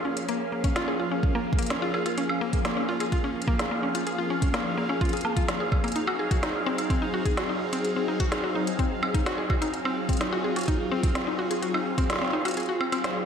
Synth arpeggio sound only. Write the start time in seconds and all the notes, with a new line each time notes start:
0.05 C#4
0.29 A#3
0.52 A#3
0.64 C#4
0.76 F4
0.88 G#4
1.00 F4
1.12 C#4
1.35 A#3
1.59 A#3
1.70 C#4
1.82 F4
1.94 G#4
2.06 F4
2.18 C#4
2.41 A#3
2.65 A#3
2.77 C#4
2.89 F4
3.00 G#4
3.12 F4
3.24 C#4
3.48 A#3
3.71 A#3
3.83 C#4
3.95 F4
4.07 G#4
4.18 F4
4.30 C#4
4.54 A#3
4.77 A#3
4.89 C#4
5.01 F4
5.13 G#4
5.25 A#3
5.36 F4
5.60 G#4
5.84 A#3
5.96 D#4
6.07 F#4
6.19 G#4
6.31 F#4
6.43 D#4
6.66 C4
6.90 C4
7.02 D#4
7.14 F#4
7.26 G#4
7.37 F#4
7.49 D#4
7.73 C4
7.96 C4
8.08 D#4
8.20 F#4
8.32 G#4
8.44 F#4
8.55 D#4
8.79 C4
9.03 C4
9.14 D#4
9.26 F#4
9.38 G#4
9.50 F#4
9.62 D#4
9.85 C4
10.09 C4
10.21 D#4
10.33 F#4
10.44 G#4
10.56 F#4
10.68 D#4
10.92 C4
11.15 C4
11.27 D#4
11.39 F#4
11.51 G#4
11.62 F#4
11.74 D#4
11.98 C4
12.21 C4
12.33 D#4
12.45 F#4
12.57 G#4
12.69 F#4
12.81 C4
12.92 C4
13.04 C5